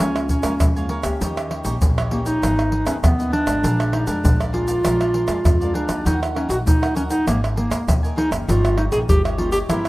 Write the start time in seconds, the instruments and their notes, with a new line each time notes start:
0.00 upright bass C#2, nylon-string guitar C#3 G#3 A#3 F4, clarinet C#4, cavaquinho A#4 C#5 F5 G#5, pandeiro, tamborim, shaker, surdo
0.16 pandeiro, tamborim, shaker
0.29 clarinet C#4, cavaquinho A#4 C#5 F5 G#5, pandeiro, shaker, surdo
0.43 upright bass F2, nylon-string guitar G#3 A#3 F4, cavaquinho A#4 C#5 F5 G#5, pandeiro, tamborim, shaker
0.60 upright bass F2, nylon-string guitar C#3, pandeiro, tamborim, shaker, surdo
0.76 nylon-string guitar G#3 A#3 F4, cavaquinho C#5 F5 G#5, pandeiro, shaker
0.89 cavaquinho A#4 C#5 F5 G#5, pandeiro
1.03 upright bass C#2, nylon-string guitar A#3 C#4 G4, pandeiro, tamborim, shaker
1.21 upright bass D#2, nylon-string guitar D#3, cavaquinho D#4 G4 C#5 D#5, pandeiro, shaker, surdo
1.37 pandeiro, tamborim, shaker
1.50 cavaquinho D#4 G4 C#5 D#5, pandeiro, tamborim
1.64 upright bass A#1, nylon-string guitar A#3 C#4 G4, cavaquinho D#4 G4 C#5 D#5, pandeiro, shaker
1.82 upright bass A#1, nylon-string guitar A#2, pandeiro, shaker, surdo
1.98 cavaquinho G4 C#5 D#5, pandeiro, tamborim, shaker
2.11 nylon-string guitar A#3 C#4 G4, clarinet A#3, cavaquinho D#4 G4 C#5 D#5, pandeiro
2.25 clarinet D#4, cavaquinho G4 C#5 D#5, pandeiro, shaker
2.42 upright bass G#1, nylon-string guitar G#2 D#3 B3 D#4, cavaquinho D#4 G#4 B4 D#5, pandeiro, tamborim, shaker, surdo
2.59 pandeiro, tamborim, shaker
2.71 cavaquinho D#4 G#4 B4 D#5, pandeiro
2.85 upright bass D#2, nylon-string guitar D#3 B3 D#4, clarinet C#4, cavaquinho D#4 G#4 B4 D#5, pandeiro, tamborim, shaker
3.03 upright bass D#2, nylon-string guitar D#3, clarinet B3, pandeiro, tamborim, shaker, surdo
3.18 nylon-string guitar D#3 B3 D#4, cavaquinho G#4 B4 D#5, pandeiro, shaker
3.31 clarinet D4, cavaquinho D#4 G#4 B4 D#5, pandeiro
3.46 upright bass G#1, nylon-string guitar F3 G#3 D4, pandeiro, tamborim, shaker
3.63 upright bass A#1, nylon-string guitar A#2, cavaquinho G#4 A#4 D5 F5, pandeiro, shaker, surdo
3.80 pandeiro, tamborim, shaker
3.92 clarinet D#4, cavaquinho G#4 A#4 D5 F5, pandeiro, tamborim
4.07 upright bass F2, nylon-string guitar F3 G#3 D4, clarinet D4, cavaquinho G#4 A#4 D5 F5, pandeiro, shaker
4.24 upright bass A#1, nylon-string guitar F2, pandeiro, shaker, surdo
4.40 cavaquinho A#4 D5 F5, pandeiro, tamborim, shaker
4.53 nylon-string guitar F3 G#3 D4, clarinet F4, cavaquinho G#4 A#4 D5 F5, pandeiro
4.67 cavaquinho A#4 D5 F5, pandeiro, shaker
4.84 upright bass A#1, nylon-string guitar A#2 F3 G#3 D4, cavaquinho G#4 A#4 D5 F5, pandeiro, tamborim, shaker, surdo
5.01 pandeiro, tamborim, shaker
5.13 cavaquinho G#4 A#4 D5 F5, pandeiro
5.28 upright bass F2, nylon-string guitar F3 G#3 D4, cavaquinho G#4 A#4 D5 F5, pandeiro, tamborim, shaker
5.45 upright bass F2, nylon-string guitar F2, pandeiro, tamborim, shaker, surdo
5.61 nylon-string guitar F3 G#3 D4, cavaquinho A#4 D5 F5, pandeiro, shaker
5.74 clarinet D4, cavaquinho G#4 A#4 D5 F5, pandeiro
5.89 upright bass D2, nylon-string guitar F#3 A#3 D#4, pandeiro, tamborim, shaker
6.05 upright bass D#2, nylon-string guitar D#3, clarinet D#4, cavaquinho F#4 A#4 D#5 F#5, pandeiro, shaker, surdo
6.23 pandeiro, tamborim, shaker
6.34 nylon-string guitar F#3 A#3 D#4, clarinet C#4, cavaquinho F#4 A#4 D#5 F#5, pandeiro, tamborim
6.48 upright bass A#1, cavaquinho F#4 A#4 D#5 F#5, clarinet F#4, pandeiro, shaker
6.66 upright bass D#2, nylon-string guitar A#2, clarinet D#4, pandeiro, shaker, surdo
6.82 nylon-string guitar F#3 A#3 D#4, cavaquinho A#4 D#5 F#5, pandeiro, tamborim, shaker
6.95 clarinet C#4, cavaquinho F#4 A#4 D#5 F#5, pandeiro, shaker
7.09 clarinet D#4, cavaquinho A#4 D#5 F#5, pandeiro, shaker
7.27 upright bass G#1, nylon-string guitar G#2 D#3 A#3 D#4, clarinet A#3, cavaquinho G#4 A#4 D#5 G#5, pandeiro, tamborim, shaker, surdo
7.44 pandeiro, tamborim, shaker
7.56 nylon-string guitar D#3 A#3 D#4, clarinet A#3, cavaquinho G#4 A#4 D#5 G#5, pandeiro
7.70 upright bass D#2, cavaquinho G#4 A#4 D#5 G#5, pandeiro, tamborim, shaker
7.88 upright bass D#2, nylon-string guitar D#3 A#3 D#4, pandeiro, tamborim, shaker, surdo
8.03 cavaquinho A#4 D#5 G#5, pandeiro, shaker
8.16 clarinet D#4, cavaquinho G#4 A#4 D#5 G#5, pandeiro
8.31 upright bass F#1, nylon-string guitar D#3 A#3 C#4, pandeiro, tamborim, shaker
8.47 upright bass G1, nylon-string guitar G2, cavaquinho D#4 G4 C#5 D#5, clarinet F4, pandeiro, shaker, surdo
8.65 pandeiro, tamborim, shaker
8.77 cavaquinho D#4 G4 C#5 D#5, clarinet D#4, pandeiro, tamborim
8.92 upright bass A#1, nylon-string guitar D#3 A#3 C#4, cavaquinho D#4 G4 C#5 D#5, clarinet G#4, pandeiro, shaker
9.09 upright bass G1, nylon-string guitar G2, clarinet G4, pandeiro, shaker, surdo
9.24 cavaquinho G4 C#5 D#5, pandeiro, tamborim, shaker
9.38 nylon-string guitar D#3 A#3 C#4, cavaquinho D#4 G4 C#5 D#5, clarinet F4, pandeiro
9.52 clarinet G4, cavaquinho G4 C#5 D#5, pandeiro, shaker
9.69 upright bass G1, nylon-string guitar G2 E3 A#3 C4, cavaquinho E4 A#4 C5 E5, clarinet E4, pandeiro, tamborim, shaker, surdo
9.85 pandeiro, tamborim, shaker